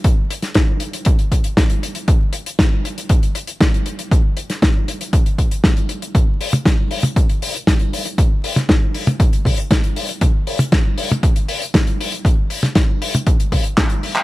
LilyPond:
\new DrumStaff \with { instrumentName = "Drums" } \drummode { \time 4/4 \tempo 4 = 118 <hh bd>8 hh16 <hh sn>16 <hh bd sn>8 hh16 hh16 <hh bd>16 hh16 <hh bd>16 hh16 <hh bd sn>16 hh16 hh16 hh16 | <hh bd>8 hh16 hh16 <hh bd sn>8 hh16 hh16 <hh bd>16 hh16 hh16 hh16 <hh bd sn>16 hh16 hh16 hh16 | <hh bd>8 hh16 <hh sn>16 <hh bd sn>8 hh16 hh16 <hh bd>16 hh16 <hh bd>16 hh16 <hh bd sn>16 hh16 hh16 hh16 | <hh bd tommh>8 hho16 <hh tommh>16 <hh bd sn>8 hho16 <hh tommh>16 <hh bd>16 hh16 hho16 hh16 <hh bd sn>16 hh16 hho16 hh16 |
<hh bd>8 hho16 <hh sn tommh>16 <hh bd sn>8 hho16 <hh tommh>16 <hh bd>16 hh16 <hho bd tommh>16 hh16 <hh bd sn>16 hh16 hho16 hh16 | <hh bd tommh>8 hho16 <hh tommh>16 <hh bd sn>8 hho16 <hh tommh>16 <hh bd>16 hh16 hho16 hh16 <hh bd sn>16 hh16 hho16 hh16 | <hh bd>8 hho16 <hh sn tommh>16 <hh bd sn>8 hho16 <hh tommh>16 <hh bd>16 hh16 <hho bd tommh>16 hh16 <hc hh bd sn>16 hh16 hho16 <hc hh>16 | }